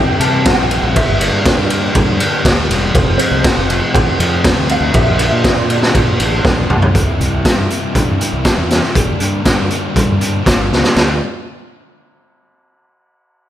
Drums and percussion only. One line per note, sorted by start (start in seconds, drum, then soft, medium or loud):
0.21 ride medium
0.45 kick loud
0.45 snare loud
0.45 ride loud
0.71 ride medium
0.96 kick loud
0.96 ride loud
1.21 ride medium
1.45 kick loud
1.45 snare loud
1.45 ride loud
1.70 ride medium
1.95 kick loud
1.95 ride loud
2.20 ride medium
2.45 kick loud
2.45 snare loud
2.45 ride loud
2.71 snare soft
2.71 ride medium
2.95 kick loud
2.95 ride loud
3.19 ride medium
3.44 kick loud
3.44 snare loud
3.44 ride loud
3.70 ride medium
3.95 kick loud
3.95 ride loud
4.20 ride medium
4.44 kick loud
4.44 snare loud
4.44 ride loud
4.69 ride medium
4.94 kick loud
4.94 ride loud
5.19 ride medium
5.44 kick loud
5.44 snare loud
5.44 ride medium
5.70 ride medium
5.83 snare medium
5.95 kick loud
5.95 ride loud
6.20 ride medium
6.45 kick loud
6.45 snare medium
6.70 mid tom loud
6.82 floor tom loud
6.95 kick loud
6.95 closed hi-hat loud
7.21 closed hi-hat medium
7.45 kick loud
7.45 snare loud
7.45 closed hi-hat medium
7.70 closed hi-hat medium
7.95 kick loud
7.95 closed hi-hat medium
8.21 closed hi-hat medium
8.45 kick loud
8.45 snare loud
8.45 closed hi-hat medium
8.71 snare medium
8.71 closed hi-hat medium
8.83 snare soft
8.95 kick loud
8.95 closed hi-hat medium
9.20 closed hi-hat medium
9.45 kick loud
9.45 snare loud
9.45 closed hi-hat loud
9.70 closed hi-hat medium
9.96 kick loud
9.96 closed hi-hat medium
10.21 closed hi-hat medium
10.46 kick loud
10.46 snare loud
10.46 closed hi-hat loud
10.73 snare medium
10.84 snare medium
10.96 snare loud
10.96 china medium